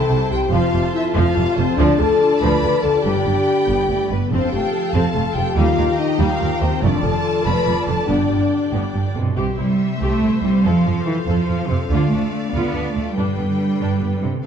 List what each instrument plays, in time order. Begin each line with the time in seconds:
Already playing: harp C3 G3 C4 E4 G4 C5 G5, viola section E4, french horn section A4, violin section C5 G5 A5, flute A5
0.00 harp C6
0.09 double bass section C2, viola section C3, cello section C3, harp E5
0.20 harp C5
0.30 double bass section C2, cello section C3, viola section C3, harp E4, french horn section G4, violin section G5, flute G5
0.43 harp C4
0.51 double bass section F1, cello section F2, viola section F3 F4, harp F3, french horn section F4, violin section F5 A5, flute F5
0.64 harp C4
0.72 double bass section F1, cello section F2, viola section C3, harp F4
0.86 harp A4
0.93 french horn section E4, harp C5, violin section E5, flute E5
1.06 harp F5
1.15 double bass section F1, cello section F2, viola section F3, french horn section F4, violin section F5, flute F5, harp A5
1.27 harp C6
1.36 double bass section F1, cello section F2, viola section C3, harp A5
1.49 harp F5
1.56 double bass section F1, cello section F2, viola section C3, french horn section C4, violin section C5, harp C5, flute C5
1.69 harp A4
1.77 cello section D2, double bass section D2, harp D3, viola section F3, french horn section D4, violin section D5
1.82 flute D5
1.89 harp A3
1.97 double bass section D2, cello section D2, viola section D3, harp D4, french horn section A4, violin section A5
2.01 flute A5
2.09 harp F4
2.20 harp A4
2.31 harp D5
2.39 double bass section D2, cello section D2, viola section F3, french horn section B4, harp F5, violin section B5, flute B5
2.52 harp A5
2.63 double bass section D2, cello section D2, viola section D3, harp F5
2.72 harp D5
2.82 double bass section D2, cello section D2, viola section D3, french horn section A4, harp A4, violin section A5, flute A5
2.94 harp F4
3.03 double bass section G1, harp G2, cello section G2, viola section G3 D4, french horn section G4, violin section G5 B5, flute G5
3.15 harp D3
3.25 double bass section G1, cello section G2, viola section D3, harp D4
3.35 harp D3
3.46 harp B4
3.56 harp D5
3.67 double bass section G1, cello section G2, viola section B3, harp B4
3.78 harp B5
3.88 double bass section G1, cello section G2, viola section A3, harp D5
3.98 harp B4
4.08 double bass section G1, cello section G2, viola section G3, french horn section B3, harp D4, violin section B4
4.12 flute B4
4.20 harp D3
4.30 double bass section F1, cello section F2, harp F3, french horn section C4, viola section C4 A4, violin section C5 F5 A5, flute C5
4.41 harp A3
4.51 double bass section F1, cello section F2, viola section A3, harp F4, french horn section G4, violin section G5, flute G5
4.63 harp C5
4.73 harp A4
4.84 harp F5
4.93 double bass section F1, cello section F2, viola section C4, violin section A5, flute A5, harp C6
4.97 french horn section A4
5.05 harp A5
5.15 double bass section F1, cello section F2, viola section A3, harp C6
5.34 double bass section F1, cello section F2, viola section F3, french horn section G4, harp A4, violin section G5
5.39 flute G5
5.47 harp C5
5.56 double bass section D#2, cello section D#2, harp D#3, viola section G3 G4, french horn section F4, violin section F5 G5 A#5, flute F5
5.68 harp D#4
5.78 double bass section D#2, cello section D#2, viola section D#3, harp A#3
5.88 harp G4
5.98 french horn section D#4, violin section D#5, harp D#5, flute D#5
6.11 harp A#4
6.19 double bass section D#2, cello section D#2, viola section G3, french horn section F4, violin section F5, flute F5, harp G5
6.30 harp D#6
6.39 cello section D#2, double bass section D#2, viola section D#3, harp G5
6.51 harp A#4
6.60 double bass section D#2, cello section D#2, viola section D#3, french horn section C4, violin section C5, flute C5, harp D#5
6.72 harp G4
6.82 double bass section F1, cello section F2, harp F2, viola section A3 F4, french horn section D4, violin section D5 A5, flute D5
6.94 harp F3
7.02 double bass section F1, cello section F2, viola section F3, harp A3, french horn section A4, flute A5, violin section A5
7.14 harp A4
7.25 harp D5
7.35 harp A4
7.44 double bass section F1, cello section F2, viola section A3, french horn section B4, harp A5, flute B5, violin section B5
7.55 harp D6
7.66 double bass section F1, cello section F2, viola section F3
7.76 harp A4
7.86 double bass section F1, cello section F2, viola section D3, french horn section A4, harp D5, violin section A5, flute A5
7.99 harp A4
8.07 double bass section G1, cello section G2, harp G2, viola section B3 D4, french horn section D4, flute D5, violin section D5 G5
8.20 harp D3
8.29 double bass section G1, cello section G2, viola section G3, harp B3
8.40 harp G4
8.51 harp D5
8.61 harp B4
8.72 double bass section G1, cello section A2, viola section B3, harp G5
8.84 harp D6
8.94 double bass section G1, cello section G2, viola section G3, harp G5
9.04 harp B4
9.15 double bass section G1, cello section B2 C3, viola section D3, harp D5
9.25 harp G4
9.37 double bass section C2, harp C3, cello section C3, viola section G4, violin section C5 E5
9.48 harp G3
9.57 double bass section C2, cello section G3, harp C4, viola section E4
9.69 harp E4
9.79 harp C5
9.89 harp E4
10.00 double bass section C2, cello section A3, viola section G4, harp E5
10.11 harp C6
10.21 double bass section C2, viola section E4, harp E5
10.33 harp C5
10.42 double bass section C2, cello section G3, viola section C4, harp E4
10.54 harp C4
10.64 double bass section F2, cello section F3, harp F3, viola section A4, violin section F5
10.76 harp C4
10.86 double bass section F2, harp F4, viola section F4
10.98 harp A4
11.06 cello section E3, harp C5
11.18 harp F5
11.27 double bass section F2, cello section F3, viola section A4, harp A5
11.39 harp C6
11.48 double bass section F2, viola section F4, harp A5
11.59 harp F5
11.69 double bass section F2, cello section C3, viola section C4, harp C5
11.81 harp A4
11.89 double bass section D2, cello section D3, harp D3, viola section F4, violin section D5
12.02 harp A3
12.10 double bass section D2, cello section A3, harp D4, viola section D4
12.24 harp F4
12.34 harp A4
12.44 harp D5
12.53 double bass section D2, cello section B3, viola section F4, harp F5
12.66 harp A5
12.74 double bass section D2, viola section D4, harp F5
12.86 harp D5
12.94 double bass section D2, cello section A3, viola section A3, harp A4
13.05 harp F4
13.16 harp G2, double bass section G2, cello section G3, viola section D4, violin section B4 G5
13.26 harp D3
13.37 double bass section G2, viola section B3, harp D4
13.48 harp D3
13.59 harp B4
13.69 harp D5
13.80 double bass section G2, viola section D4, harp B4
13.91 harp B5
14.02 double bass section G2, viola section B3, harp D5
14.13 harp B4
14.22 double bass section G2, cello section C3, viola section G3, harp D4
14.34 harp D3
14.43 double bass section F2, violin section F5